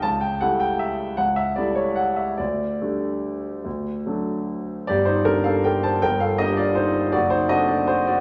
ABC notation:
X:1
M:3/4
L:1/8
Q:1/4=156
K:Gm
V:1 name="Grand piano"
a g ^f g =e2 | ^f =e d ^c f e | d6- | d4 z2 |
[Gd] [Ec] [DB] [Af] [Bg] [ca] | [Bg] [Af] [Ge] [Fd] [Ec]2 | [^Fd] [Ec] [Fe] [Fd] [Fc] [Fd] |]
V:2 name="Grand piano"
^C,,2 [G,A,=E]4 | ^C,,2 [G,A,=E]4 | D,,2 [G,A,D]4 | D,,2 [^F,A,D]4 |
G,,,2 [G,B,]4 | G,,,2 [G,B,D]4 | ^F,,,2 [A,CD]4 |]